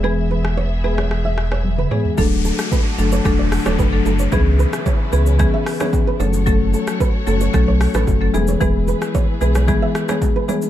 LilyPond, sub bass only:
\new Staff \with { instrumentName = "Sub bass" } { \clef bass \time 4/4 \key e \mixolydian \tempo 4 = 112 e,,2.~ e,,8 r8 | d,,8. r8. fis,,8 e,,8. d,,16 fis,,8 fis,,8 | cis,8. r8. cis,8. r4 r16 fis,,8~ | fis,,8. r8. fis,,8 b,,8. a,,16 fis,,8 e,,8 |
e,,8. r8. b,,8. r4. r16 | }